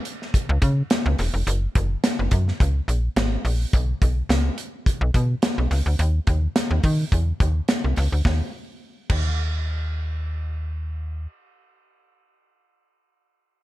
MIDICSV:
0, 0, Header, 1, 3, 480
1, 0, Start_track
1, 0, Tempo, 565504
1, 1246, Time_signature, 4, 2, 24, 8
1, 11572, End_track
2, 0, Start_track
2, 0, Title_t, "FM bass"
2, 0, Program_c, 0, 39
2, 418, Note_on_c, 0, 37, 105
2, 499, Note_off_c, 0, 37, 0
2, 524, Note_on_c, 0, 49, 102
2, 703, Note_off_c, 0, 49, 0
2, 897, Note_on_c, 0, 37, 100
2, 978, Note_off_c, 0, 37, 0
2, 1010, Note_on_c, 0, 28, 101
2, 1105, Note_off_c, 0, 28, 0
2, 1135, Note_on_c, 0, 29, 90
2, 1217, Note_off_c, 0, 29, 0
2, 1247, Note_on_c, 0, 30, 114
2, 1424, Note_off_c, 0, 30, 0
2, 1490, Note_on_c, 0, 30, 108
2, 1667, Note_off_c, 0, 30, 0
2, 1861, Note_on_c, 0, 30, 92
2, 1941, Note_off_c, 0, 30, 0
2, 1965, Note_on_c, 0, 42, 94
2, 2143, Note_off_c, 0, 42, 0
2, 2210, Note_on_c, 0, 37, 97
2, 2386, Note_off_c, 0, 37, 0
2, 2445, Note_on_c, 0, 34, 96
2, 2623, Note_off_c, 0, 34, 0
2, 2686, Note_on_c, 0, 32, 104
2, 2863, Note_off_c, 0, 32, 0
2, 2926, Note_on_c, 0, 34, 102
2, 3103, Note_off_c, 0, 34, 0
2, 3169, Note_on_c, 0, 35, 114
2, 3345, Note_off_c, 0, 35, 0
2, 3411, Note_on_c, 0, 35, 92
2, 3587, Note_off_c, 0, 35, 0
2, 3645, Note_on_c, 0, 37, 98
2, 3822, Note_off_c, 0, 37, 0
2, 4253, Note_on_c, 0, 35, 99
2, 4335, Note_off_c, 0, 35, 0
2, 4365, Note_on_c, 0, 47, 97
2, 4543, Note_off_c, 0, 47, 0
2, 4737, Note_on_c, 0, 35, 87
2, 4818, Note_off_c, 0, 35, 0
2, 4846, Note_on_c, 0, 37, 94
2, 4941, Note_off_c, 0, 37, 0
2, 4974, Note_on_c, 0, 38, 93
2, 5056, Note_off_c, 0, 38, 0
2, 5086, Note_on_c, 0, 39, 110
2, 5263, Note_off_c, 0, 39, 0
2, 5323, Note_on_c, 0, 39, 99
2, 5502, Note_off_c, 0, 39, 0
2, 5692, Note_on_c, 0, 39, 91
2, 5774, Note_off_c, 0, 39, 0
2, 5804, Note_on_c, 0, 51, 99
2, 5982, Note_off_c, 0, 51, 0
2, 6043, Note_on_c, 0, 40, 95
2, 6222, Note_off_c, 0, 40, 0
2, 6283, Note_on_c, 0, 39, 91
2, 6462, Note_off_c, 0, 39, 0
2, 6658, Note_on_c, 0, 36, 79
2, 6738, Note_off_c, 0, 36, 0
2, 6769, Note_on_c, 0, 37, 104
2, 6863, Note_off_c, 0, 37, 0
2, 6896, Note_on_c, 0, 38, 85
2, 6977, Note_off_c, 0, 38, 0
2, 7004, Note_on_c, 0, 39, 101
2, 7145, Note_off_c, 0, 39, 0
2, 7721, Note_on_c, 0, 39, 96
2, 9567, Note_off_c, 0, 39, 0
2, 11572, End_track
3, 0, Start_track
3, 0, Title_t, "Drums"
3, 43, Note_on_c, 9, 42, 85
3, 128, Note_off_c, 9, 42, 0
3, 186, Note_on_c, 9, 38, 36
3, 271, Note_off_c, 9, 38, 0
3, 288, Note_on_c, 9, 36, 100
3, 293, Note_on_c, 9, 42, 90
3, 373, Note_off_c, 9, 36, 0
3, 378, Note_off_c, 9, 42, 0
3, 527, Note_on_c, 9, 36, 96
3, 528, Note_on_c, 9, 42, 82
3, 611, Note_off_c, 9, 36, 0
3, 613, Note_off_c, 9, 42, 0
3, 766, Note_on_c, 9, 42, 88
3, 771, Note_on_c, 9, 38, 118
3, 851, Note_off_c, 9, 42, 0
3, 856, Note_off_c, 9, 38, 0
3, 1006, Note_on_c, 9, 46, 78
3, 1012, Note_on_c, 9, 38, 41
3, 1091, Note_off_c, 9, 46, 0
3, 1097, Note_off_c, 9, 38, 0
3, 1250, Note_on_c, 9, 42, 100
3, 1335, Note_off_c, 9, 42, 0
3, 1488, Note_on_c, 9, 42, 67
3, 1489, Note_on_c, 9, 36, 107
3, 1573, Note_off_c, 9, 42, 0
3, 1574, Note_off_c, 9, 36, 0
3, 1729, Note_on_c, 9, 38, 111
3, 1729, Note_on_c, 9, 42, 104
3, 1813, Note_off_c, 9, 38, 0
3, 1814, Note_off_c, 9, 42, 0
3, 1962, Note_on_c, 9, 42, 88
3, 1966, Note_on_c, 9, 36, 99
3, 2047, Note_off_c, 9, 42, 0
3, 2051, Note_off_c, 9, 36, 0
3, 2104, Note_on_c, 9, 38, 36
3, 2189, Note_off_c, 9, 38, 0
3, 2209, Note_on_c, 9, 36, 94
3, 2216, Note_on_c, 9, 42, 87
3, 2294, Note_off_c, 9, 36, 0
3, 2301, Note_off_c, 9, 42, 0
3, 2453, Note_on_c, 9, 42, 89
3, 2538, Note_off_c, 9, 42, 0
3, 2686, Note_on_c, 9, 42, 82
3, 2691, Note_on_c, 9, 38, 118
3, 2771, Note_off_c, 9, 42, 0
3, 2776, Note_off_c, 9, 38, 0
3, 2930, Note_on_c, 9, 46, 77
3, 3015, Note_off_c, 9, 46, 0
3, 3169, Note_on_c, 9, 36, 124
3, 3172, Note_on_c, 9, 42, 98
3, 3254, Note_off_c, 9, 36, 0
3, 3257, Note_off_c, 9, 42, 0
3, 3410, Note_on_c, 9, 36, 102
3, 3410, Note_on_c, 9, 42, 69
3, 3494, Note_off_c, 9, 36, 0
3, 3495, Note_off_c, 9, 42, 0
3, 3653, Note_on_c, 9, 38, 112
3, 3653, Note_on_c, 9, 42, 98
3, 3738, Note_off_c, 9, 38, 0
3, 3738, Note_off_c, 9, 42, 0
3, 3886, Note_on_c, 9, 42, 91
3, 3971, Note_off_c, 9, 42, 0
3, 4128, Note_on_c, 9, 36, 91
3, 4134, Note_on_c, 9, 42, 86
3, 4213, Note_off_c, 9, 36, 0
3, 4219, Note_off_c, 9, 42, 0
3, 4366, Note_on_c, 9, 36, 103
3, 4369, Note_on_c, 9, 42, 83
3, 4451, Note_off_c, 9, 36, 0
3, 4454, Note_off_c, 9, 42, 0
3, 4602, Note_on_c, 9, 42, 86
3, 4607, Note_on_c, 9, 38, 120
3, 4687, Note_off_c, 9, 42, 0
3, 4692, Note_off_c, 9, 38, 0
3, 4847, Note_on_c, 9, 46, 80
3, 4853, Note_on_c, 9, 38, 40
3, 4932, Note_off_c, 9, 46, 0
3, 4938, Note_off_c, 9, 38, 0
3, 5086, Note_on_c, 9, 42, 104
3, 5170, Note_off_c, 9, 42, 0
3, 5322, Note_on_c, 9, 42, 72
3, 5325, Note_on_c, 9, 36, 104
3, 5407, Note_off_c, 9, 42, 0
3, 5410, Note_off_c, 9, 36, 0
3, 5566, Note_on_c, 9, 38, 106
3, 5566, Note_on_c, 9, 42, 91
3, 5651, Note_off_c, 9, 38, 0
3, 5651, Note_off_c, 9, 42, 0
3, 5801, Note_on_c, 9, 46, 86
3, 5803, Note_on_c, 9, 36, 97
3, 5885, Note_off_c, 9, 46, 0
3, 5888, Note_off_c, 9, 36, 0
3, 6044, Note_on_c, 9, 36, 92
3, 6047, Note_on_c, 9, 42, 89
3, 6129, Note_off_c, 9, 36, 0
3, 6132, Note_off_c, 9, 42, 0
3, 6283, Note_on_c, 9, 36, 94
3, 6284, Note_on_c, 9, 42, 79
3, 6368, Note_off_c, 9, 36, 0
3, 6369, Note_off_c, 9, 42, 0
3, 6519, Note_on_c, 9, 42, 84
3, 6524, Note_on_c, 9, 38, 116
3, 6604, Note_off_c, 9, 42, 0
3, 6609, Note_off_c, 9, 38, 0
3, 6760, Note_on_c, 9, 46, 77
3, 6766, Note_on_c, 9, 38, 39
3, 6844, Note_off_c, 9, 46, 0
3, 6851, Note_off_c, 9, 38, 0
3, 7003, Note_on_c, 9, 36, 111
3, 7008, Note_on_c, 9, 38, 92
3, 7088, Note_off_c, 9, 36, 0
3, 7093, Note_off_c, 9, 38, 0
3, 7721, Note_on_c, 9, 49, 90
3, 7722, Note_on_c, 9, 36, 106
3, 7806, Note_off_c, 9, 49, 0
3, 7807, Note_off_c, 9, 36, 0
3, 11572, End_track
0, 0, End_of_file